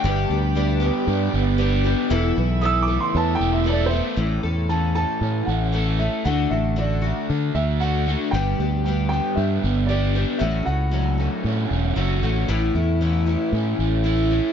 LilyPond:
<<
  \new Staff \with { instrumentName = "Grand piano" } { \time 4/4 \key a \mixolydian \tempo 4 = 116 g''2~ g''8 r4. | r4 \tuplet 3/2 { <dis''' e'''>8 d'''8 c'''8 a''8 g''8 e''8 d''8 <c'' e''>4 } | r4 a''8 a''4 fis''4 e''8 | fis''8 e''8 d''4 r8 e''8 fis''4 |
g''4. g''8 e''4 d''4 | e''8 fis''2. r8 | r1 | }
  \new Staff \with { instrumentName = "Tonewheel organ" } { \time 4/4 \key a \mixolydian << { <g' d'' d'''>1 | <a' e'' e'''>1 | r1 | r1 |
r1 | r1 | r1 | } \\ { b''1~ | b''1 | r1 | r1 |
r1 | r1 | r1 | } >> }
  \new Staff \with { instrumentName = "Reed electric piano" } { \time 4/4 \key a \mixolydian <g' b' d''>8 r8 <g' b' d''>8 r8 <g' b' d''>8 r8 <g' b' d''>8 r8 | <a' b' e''>8 r8 <a' b' e''>8 r8 <a' b' cis''>8 r8 <a' b' e''>8 r8 | r1 | r1 |
r1 | r1 | r1 | }
  \new Staff \with { instrumentName = "Twelve-string acoustic guitar" } { \time 4/4 \key a \mixolydian <g, d g b d' g'>8 <g b d' g'>8 <g b d' g'>8 <g b d' g'>4. <g b d' g'>8 <g b d' g'>8 | <e, b, e b e' a'>8 <e b e' a'>8 <e b e' a'>8 <e b e' a'>4. <e b e' a'>8 <e b e' a'>8 | <a, e a cis' a'>8 <a cis' a'>8 <e a cis' a'>8 <a cis' a'>4. <e a cis' a'>8 <a cis' a'>8 | <d a d' fis'>8 <a d' fis'>8 <d a d' fis'>8 <a d' fis'>4. <d a d' fis'>8 <a d' fis'>8 |
<g, d g b d' g'>8 <g b d' g'>8 <g b d' g'>8 <g b d' g'>4. <g b d' g'>8 <g b d' g'>8 | <a, fis a cis' fis'>8 <a cis' fis'>8 <fis a cis' fis'>8 <a cis' fis'>4. <fis a cis' fis'>8 <a cis' fis'>8 | <a, e a cis' e'>8 <a cis' e'>8 <e a cis' e'>8 <a cis' e'>4. <e a cis' e'>8 <a cis' e'>8 | }
  \new Staff \with { instrumentName = "Overdriven electric guitar" } { \time 4/4 \key a \mixolydian g,4 g8 b8 d'8 b8 g'8 b8 | e,4 e8 a8 b8 a8 a'8 a8 | a,4 e8 a8 cis'8 a8 a'8 a8 | d4 d8 a8 d'8 a8 fis'8 a8 |
g,4 g8 b8 d'8 b8 g'8 b8 | a,4 fis8 a8 cis'8 a8 fis'8 a8 | a,4 e8 a8 cis'8 a8 e'8 a8 | }
  \new Staff \with { instrumentName = "Fingered electric bass" } { \clef bass \time 4/4 \key a \mixolydian g,,8 d,4. g,8 g,,4. | e,,8 b,,4. e,8 e,,4. | a,,8 e,4. a,8 a,,4. | d,8 a,,4. d8 d,4. |
g,,8 d,4. g,8 g,,4. | a,,8 cis,4. a,8 e,,8 fis,,8 a,,8 | a,,8 e,4. a,8 a,,4. | }
>>